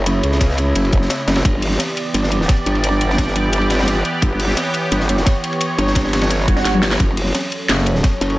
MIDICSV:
0, 0, Header, 1, 6, 480
1, 0, Start_track
1, 0, Tempo, 346821
1, 86, Time_signature, 4, 2, 24, 8
1, 11606, End_track
2, 0, Start_track
2, 0, Title_t, "Analog synth pad"
2, 0, Program_c, 0, 89
2, 0, Note_on_c, 0, 49, 77
2, 0, Note_on_c, 0, 57, 73
2, 0, Note_on_c, 0, 64, 70
2, 0, Note_on_c, 0, 73, 85
2, 1950, Note_off_c, 0, 49, 0
2, 1950, Note_off_c, 0, 57, 0
2, 1950, Note_off_c, 0, 73, 0
2, 1968, Note_off_c, 0, 64, 0
2, 2007, Note_on_c, 0, 67, 71
2, 2008, Note_on_c, 0, 52, 78
2, 2008, Note_on_c, 0, 59, 72
2, 2008, Note_on_c, 0, 74, 88
2, 5809, Note_off_c, 0, 74, 0
2, 5847, Note_on_c, 0, 73, 86
2, 9631, Note_off_c, 0, 67, 0
2, 9632, Note_off_c, 0, 52, 0
2, 9632, Note_off_c, 0, 59, 0
2, 9648, Note_off_c, 0, 73, 0
2, 9687, Note_on_c, 0, 54, 79
2, 9687, Note_on_c, 0, 73, 84
2, 9688, Note_on_c, 0, 61, 72
2, 9688, Note_on_c, 0, 69, 74
2, 11606, Note_off_c, 0, 54, 0
2, 11606, Note_off_c, 0, 61, 0
2, 11606, Note_off_c, 0, 69, 0
2, 11606, Note_off_c, 0, 73, 0
2, 11606, End_track
3, 0, Start_track
3, 0, Title_t, "Wobble bass"
3, 0, Program_c, 1, 39
3, 0, Note_on_c, 1, 30, 96
3, 307, Note_off_c, 1, 30, 0
3, 327, Note_on_c, 1, 37, 96
3, 1027, Note_off_c, 1, 37, 0
3, 1047, Note_on_c, 1, 30, 94
3, 1508, Note_off_c, 1, 30, 0
3, 1767, Note_on_c, 1, 30, 95
3, 1988, Note_off_c, 1, 30, 0
3, 2007, Note_on_c, 1, 31, 97
3, 2467, Note_off_c, 1, 31, 0
3, 2966, Note_on_c, 1, 31, 93
3, 3427, Note_off_c, 1, 31, 0
3, 3685, Note_on_c, 1, 31, 97
3, 5587, Note_off_c, 1, 31, 0
3, 5845, Note_on_c, 1, 31, 98
3, 6306, Note_off_c, 1, 31, 0
3, 6805, Note_on_c, 1, 31, 96
3, 7266, Note_off_c, 1, 31, 0
3, 8006, Note_on_c, 1, 31, 96
3, 9187, Note_off_c, 1, 31, 0
3, 9205, Note_on_c, 1, 31, 96
3, 9667, Note_off_c, 1, 31, 0
3, 9686, Note_on_c, 1, 30, 99
3, 10147, Note_off_c, 1, 30, 0
3, 11366, Note_on_c, 1, 30, 98
3, 11606, Note_off_c, 1, 30, 0
3, 11606, End_track
4, 0, Start_track
4, 0, Title_t, "FM bass"
4, 0, Program_c, 2, 39
4, 10647, Note_on_c, 2, 30, 94
4, 11107, Note_off_c, 2, 30, 0
4, 11606, End_track
5, 0, Start_track
5, 0, Title_t, "Swell"
5, 0, Program_c, 3, 103
5, 8726, Note_on_c, 3, 60, 61
5, 9686, Note_off_c, 3, 60, 0
5, 11606, End_track
6, 0, Start_track
6, 0, Title_t, "Drums"
6, 86, Note_on_c, 9, 51, 87
6, 87, Note_on_c, 9, 42, 85
6, 224, Note_off_c, 9, 51, 0
6, 225, Note_off_c, 9, 42, 0
6, 322, Note_on_c, 9, 51, 68
6, 327, Note_on_c, 9, 42, 59
6, 441, Note_on_c, 9, 38, 41
6, 460, Note_off_c, 9, 51, 0
6, 465, Note_off_c, 9, 42, 0
6, 561, Note_on_c, 9, 51, 89
6, 565, Note_off_c, 9, 38, 0
6, 565, Note_on_c, 9, 38, 105
6, 567, Note_on_c, 9, 36, 62
6, 567, Note_on_c, 9, 42, 88
6, 695, Note_off_c, 9, 38, 0
6, 695, Note_on_c, 9, 38, 51
6, 699, Note_off_c, 9, 51, 0
6, 705, Note_off_c, 9, 36, 0
6, 705, Note_off_c, 9, 42, 0
6, 798, Note_on_c, 9, 51, 63
6, 808, Note_on_c, 9, 42, 62
6, 833, Note_off_c, 9, 38, 0
6, 936, Note_off_c, 9, 51, 0
6, 946, Note_off_c, 9, 42, 0
6, 1042, Note_on_c, 9, 51, 84
6, 1047, Note_on_c, 9, 42, 85
6, 1173, Note_off_c, 9, 51, 0
6, 1173, Note_on_c, 9, 51, 42
6, 1186, Note_off_c, 9, 42, 0
6, 1279, Note_off_c, 9, 51, 0
6, 1279, Note_on_c, 9, 51, 60
6, 1286, Note_on_c, 9, 36, 62
6, 1287, Note_on_c, 9, 42, 64
6, 1408, Note_on_c, 9, 38, 41
6, 1417, Note_off_c, 9, 51, 0
6, 1425, Note_off_c, 9, 36, 0
6, 1426, Note_off_c, 9, 42, 0
6, 1519, Note_on_c, 9, 51, 78
6, 1523, Note_off_c, 9, 38, 0
6, 1523, Note_on_c, 9, 38, 109
6, 1527, Note_on_c, 9, 42, 86
6, 1657, Note_off_c, 9, 51, 0
6, 1662, Note_off_c, 9, 38, 0
6, 1666, Note_off_c, 9, 42, 0
6, 1765, Note_on_c, 9, 38, 108
6, 1768, Note_on_c, 9, 42, 62
6, 1771, Note_on_c, 9, 51, 74
6, 1875, Note_off_c, 9, 51, 0
6, 1875, Note_on_c, 9, 51, 84
6, 1891, Note_off_c, 9, 38, 0
6, 1891, Note_on_c, 9, 38, 101
6, 1906, Note_off_c, 9, 42, 0
6, 2007, Note_on_c, 9, 36, 121
6, 2007, Note_on_c, 9, 42, 88
6, 2014, Note_off_c, 9, 51, 0
6, 2018, Note_on_c, 9, 51, 88
6, 2029, Note_off_c, 9, 38, 0
6, 2145, Note_off_c, 9, 36, 0
6, 2146, Note_off_c, 9, 42, 0
6, 2156, Note_off_c, 9, 51, 0
6, 2244, Note_on_c, 9, 46, 83
6, 2247, Note_on_c, 9, 42, 61
6, 2369, Note_on_c, 9, 38, 42
6, 2382, Note_off_c, 9, 46, 0
6, 2385, Note_off_c, 9, 42, 0
6, 2477, Note_off_c, 9, 38, 0
6, 2477, Note_on_c, 9, 38, 115
6, 2487, Note_on_c, 9, 42, 85
6, 2489, Note_on_c, 9, 51, 89
6, 2616, Note_off_c, 9, 38, 0
6, 2626, Note_off_c, 9, 42, 0
6, 2627, Note_off_c, 9, 51, 0
6, 2727, Note_on_c, 9, 42, 60
6, 2729, Note_on_c, 9, 51, 66
6, 2865, Note_off_c, 9, 42, 0
6, 2868, Note_off_c, 9, 51, 0
6, 2967, Note_on_c, 9, 42, 88
6, 2973, Note_on_c, 9, 51, 88
6, 3090, Note_on_c, 9, 38, 56
6, 3105, Note_off_c, 9, 42, 0
6, 3111, Note_off_c, 9, 51, 0
6, 3206, Note_on_c, 9, 42, 62
6, 3208, Note_on_c, 9, 51, 70
6, 3229, Note_off_c, 9, 38, 0
6, 3337, Note_on_c, 9, 38, 49
6, 3345, Note_off_c, 9, 42, 0
6, 3347, Note_off_c, 9, 51, 0
6, 3436, Note_off_c, 9, 38, 0
6, 3436, Note_on_c, 9, 38, 107
6, 3445, Note_on_c, 9, 51, 78
6, 3446, Note_on_c, 9, 36, 101
6, 3446, Note_on_c, 9, 42, 85
6, 3574, Note_off_c, 9, 38, 0
6, 3584, Note_off_c, 9, 36, 0
6, 3584, Note_off_c, 9, 51, 0
6, 3585, Note_off_c, 9, 42, 0
6, 3687, Note_on_c, 9, 42, 61
6, 3693, Note_on_c, 9, 51, 72
6, 3809, Note_off_c, 9, 51, 0
6, 3809, Note_on_c, 9, 51, 43
6, 3825, Note_off_c, 9, 42, 0
6, 3926, Note_off_c, 9, 51, 0
6, 3926, Note_on_c, 9, 42, 88
6, 3926, Note_on_c, 9, 51, 83
6, 4064, Note_off_c, 9, 51, 0
6, 4065, Note_off_c, 9, 42, 0
6, 4167, Note_on_c, 9, 42, 63
6, 4172, Note_on_c, 9, 51, 61
6, 4290, Note_on_c, 9, 38, 40
6, 4305, Note_off_c, 9, 42, 0
6, 4310, Note_off_c, 9, 51, 0
6, 4403, Note_on_c, 9, 51, 82
6, 4404, Note_off_c, 9, 38, 0
6, 4404, Note_on_c, 9, 38, 104
6, 4406, Note_on_c, 9, 36, 58
6, 4407, Note_on_c, 9, 42, 90
6, 4520, Note_off_c, 9, 38, 0
6, 4520, Note_on_c, 9, 38, 49
6, 4541, Note_off_c, 9, 51, 0
6, 4544, Note_off_c, 9, 36, 0
6, 4545, Note_off_c, 9, 42, 0
6, 4646, Note_on_c, 9, 42, 64
6, 4652, Note_on_c, 9, 51, 69
6, 4658, Note_off_c, 9, 38, 0
6, 4785, Note_off_c, 9, 42, 0
6, 4791, Note_off_c, 9, 51, 0
6, 4880, Note_on_c, 9, 51, 89
6, 4887, Note_on_c, 9, 42, 88
6, 5001, Note_off_c, 9, 51, 0
6, 5001, Note_on_c, 9, 51, 40
6, 5025, Note_off_c, 9, 42, 0
6, 5118, Note_off_c, 9, 51, 0
6, 5118, Note_on_c, 9, 51, 64
6, 5127, Note_on_c, 9, 38, 86
6, 5127, Note_on_c, 9, 42, 63
6, 5188, Note_off_c, 9, 51, 0
6, 5188, Note_on_c, 9, 51, 67
6, 5192, Note_off_c, 9, 38, 0
6, 5192, Note_on_c, 9, 38, 82
6, 5242, Note_off_c, 9, 38, 0
6, 5242, Note_on_c, 9, 38, 90
6, 5245, Note_off_c, 9, 51, 0
6, 5245, Note_on_c, 9, 51, 62
6, 5265, Note_off_c, 9, 42, 0
6, 5307, Note_off_c, 9, 51, 0
6, 5307, Note_on_c, 9, 51, 61
6, 5311, Note_off_c, 9, 38, 0
6, 5311, Note_on_c, 9, 38, 80
6, 5366, Note_on_c, 9, 42, 91
6, 5368, Note_off_c, 9, 38, 0
6, 5368, Note_on_c, 9, 38, 107
6, 5369, Note_off_c, 9, 51, 0
6, 5369, Note_on_c, 9, 51, 92
6, 5505, Note_off_c, 9, 42, 0
6, 5507, Note_off_c, 9, 38, 0
6, 5507, Note_off_c, 9, 51, 0
6, 5605, Note_on_c, 9, 42, 63
6, 5607, Note_on_c, 9, 51, 61
6, 5744, Note_off_c, 9, 42, 0
6, 5746, Note_off_c, 9, 51, 0
6, 5840, Note_on_c, 9, 51, 82
6, 5845, Note_on_c, 9, 36, 111
6, 5845, Note_on_c, 9, 42, 94
6, 5978, Note_off_c, 9, 51, 0
6, 5984, Note_off_c, 9, 36, 0
6, 5984, Note_off_c, 9, 42, 0
6, 6085, Note_on_c, 9, 42, 65
6, 6092, Note_on_c, 9, 46, 75
6, 6212, Note_on_c, 9, 38, 42
6, 6224, Note_off_c, 9, 42, 0
6, 6230, Note_off_c, 9, 46, 0
6, 6324, Note_off_c, 9, 38, 0
6, 6324, Note_on_c, 9, 38, 102
6, 6324, Note_on_c, 9, 51, 93
6, 6326, Note_on_c, 9, 42, 98
6, 6462, Note_off_c, 9, 38, 0
6, 6462, Note_off_c, 9, 51, 0
6, 6464, Note_off_c, 9, 42, 0
6, 6556, Note_on_c, 9, 51, 68
6, 6567, Note_on_c, 9, 42, 65
6, 6694, Note_off_c, 9, 51, 0
6, 6705, Note_off_c, 9, 42, 0
6, 6807, Note_on_c, 9, 42, 94
6, 6808, Note_on_c, 9, 51, 91
6, 6920, Note_on_c, 9, 38, 55
6, 6945, Note_off_c, 9, 42, 0
6, 6947, Note_off_c, 9, 51, 0
6, 7047, Note_on_c, 9, 42, 68
6, 7052, Note_on_c, 9, 51, 60
6, 7058, Note_off_c, 9, 38, 0
6, 7157, Note_on_c, 9, 38, 48
6, 7185, Note_off_c, 9, 42, 0
6, 7191, Note_off_c, 9, 51, 0
6, 7279, Note_off_c, 9, 38, 0
6, 7279, Note_on_c, 9, 38, 102
6, 7286, Note_on_c, 9, 36, 98
6, 7287, Note_on_c, 9, 42, 92
6, 7296, Note_on_c, 9, 51, 87
6, 7418, Note_off_c, 9, 38, 0
6, 7424, Note_off_c, 9, 36, 0
6, 7425, Note_off_c, 9, 42, 0
6, 7435, Note_off_c, 9, 51, 0
6, 7527, Note_on_c, 9, 42, 67
6, 7531, Note_on_c, 9, 51, 71
6, 7648, Note_off_c, 9, 51, 0
6, 7648, Note_on_c, 9, 51, 48
6, 7665, Note_off_c, 9, 42, 0
6, 7757, Note_off_c, 9, 51, 0
6, 7757, Note_on_c, 9, 51, 91
6, 7766, Note_on_c, 9, 42, 98
6, 7896, Note_off_c, 9, 51, 0
6, 7905, Note_off_c, 9, 42, 0
6, 8003, Note_on_c, 9, 51, 70
6, 8007, Note_on_c, 9, 42, 66
6, 8124, Note_on_c, 9, 38, 41
6, 8142, Note_off_c, 9, 51, 0
6, 8146, Note_off_c, 9, 42, 0
6, 8237, Note_on_c, 9, 51, 78
6, 8246, Note_on_c, 9, 36, 59
6, 8247, Note_on_c, 9, 42, 96
6, 8249, Note_off_c, 9, 38, 0
6, 8249, Note_on_c, 9, 38, 111
6, 8364, Note_off_c, 9, 38, 0
6, 8364, Note_on_c, 9, 38, 51
6, 8375, Note_off_c, 9, 51, 0
6, 8385, Note_off_c, 9, 36, 0
6, 8386, Note_off_c, 9, 42, 0
6, 8485, Note_on_c, 9, 51, 76
6, 8487, Note_on_c, 9, 42, 69
6, 8488, Note_off_c, 9, 38, 0
6, 8488, Note_on_c, 9, 38, 99
6, 8600, Note_off_c, 9, 51, 0
6, 8600, Note_on_c, 9, 51, 84
6, 8609, Note_off_c, 9, 38, 0
6, 8609, Note_on_c, 9, 38, 110
6, 8625, Note_off_c, 9, 42, 0
6, 8722, Note_off_c, 9, 38, 0
6, 8722, Note_off_c, 9, 51, 0
6, 8722, Note_on_c, 9, 38, 111
6, 8722, Note_on_c, 9, 51, 80
6, 8727, Note_on_c, 9, 42, 99
6, 8857, Note_off_c, 9, 38, 0
6, 8857, Note_on_c, 9, 38, 42
6, 8860, Note_off_c, 9, 51, 0
6, 8866, Note_off_c, 9, 42, 0
6, 8966, Note_on_c, 9, 36, 58
6, 8968, Note_on_c, 9, 42, 69
6, 8969, Note_on_c, 9, 51, 61
6, 8996, Note_off_c, 9, 38, 0
6, 9087, Note_on_c, 9, 38, 104
6, 9088, Note_off_c, 9, 51, 0
6, 9088, Note_on_c, 9, 51, 72
6, 9105, Note_off_c, 9, 36, 0
6, 9107, Note_off_c, 9, 42, 0
6, 9208, Note_off_c, 9, 38, 0
6, 9208, Note_on_c, 9, 38, 62
6, 9208, Note_on_c, 9, 42, 97
6, 9214, Note_off_c, 9, 38, 0
6, 9214, Note_on_c, 9, 38, 42
6, 9227, Note_off_c, 9, 51, 0
6, 9329, Note_on_c, 9, 48, 61
6, 9332, Note_on_c, 9, 51, 59
6, 9347, Note_off_c, 9, 42, 0
6, 9353, Note_off_c, 9, 38, 0
6, 9444, Note_on_c, 9, 38, 105
6, 9447, Note_off_c, 9, 38, 0
6, 9447, Note_on_c, 9, 38, 82
6, 9447, Note_on_c, 9, 42, 68
6, 9456, Note_off_c, 9, 51, 0
6, 9456, Note_on_c, 9, 51, 84
6, 9467, Note_off_c, 9, 48, 0
6, 9566, Note_off_c, 9, 51, 0
6, 9566, Note_on_c, 9, 51, 79
6, 9568, Note_off_c, 9, 38, 0
6, 9568, Note_on_c, 9, 38, 78
6, 9574, Note_off_c, 9, 38, 0
6, 9574, Note_on_c, 9, 38, 112
6, 9586, Note_off_c, 9, 42, 0
6, 9686, Note_off_c, 9, 51, 0
6, 9686, Note_on_c, 9, 36, 117
6, 9686, Note_on_c, 9, 51, 89
6, 9688, Note_on_c, 9, 42, 95
6, 9712, Note_off_c, 9, 38, 0
6, 9824, Note_off_c, 9, 51, 0
6, 9825, Note_off_c, 9, 36, 0
6, 9826, Note_off_c, 9, 42, 0
6, 9927, Note_on_c, 9, 42, 68
6, 9927, Note_on_c, 9, 46, 85
6, 10044, Note_on_c, 9, 38, 43
6, 10065, Note_off_c, 9, 46, 0
6, 10066, Note_off_c, 9, 42, 0
6, 10167, Note_off_c, 9, 38, 0
6, 10167, Note_on_c, 9, 38, 108
6, 10167, Note_on_c, 9, 42, 94
6, 10173, Note_on_c, 9, 51, 80
6, 10306, Note_off_c, 9, 38, 0
6, 10306, Note_off_c, 9, 42, 0
6, 10311, Note_off_c, 9, 51, 0
6, 10407, Note_on_c, 9, 42, 67
6, 10408, Note_on_c, 9, 51, 65
6, 10546, Note_off_c, 9, 42, 0
6, 10546, Note_off_c, 9, 51, 0
6, 10647, Note_on_c, 9, 38, 119
6, 10647, Note_on_c, 9, 42, 94
6, 10648, Note_on_c, 9, 51, 83
6, 10774, Note_off_c, 9, 38, 0
6, 10774, Note_on_c, 9, 38, 55
6, 10786, Note_off_c, 9, 42, 0
6, 10786, Note_off_c, 9, 51, 0
6, 10880, Note_on_c, 9, 51, 68
6, 10888, Note_on_c, 9, 42, 69
6, 10912, Note_off_c, 9, 38, 0
6, 11004, Note_on_c, 9, 38, 54
6, 11018, Note_off_c, 9, 51, 0
6, 11026, Note_off_c, 9, 42, 0
6, 11118, Note_off_c, 9, 38, 0
6, 11118, Note_on_c, 9, 38, 107
6, 11123, Note_on_c, 9, 51, 78
6, 11126, Note_on_c, 9, 36, 100
6, 11127, Note_on_c, 9, 42, 98
6, 11257, Note_off_c, 9, 38, 0
6, 11261, Note_off_c, 9, 51, 0
6, 11265, Note_off_c, 9, 36, 0
6, 11265, Note_off_c, 9, 42, 0
6, 11367, Note_on_c, 9, 42, 70
6, 11377, Note_on_c, 9, 51, 75
6, 11484, Note_off_c, 9, 51, 0
6, 11484, Note_on_c, 9, 51, 44
6, 11505, Note_off_c, 9, 42, 0
6, 11606, Note_off_c, 9, 51, 0
6, 11606, End_track
0, 0, End_of_file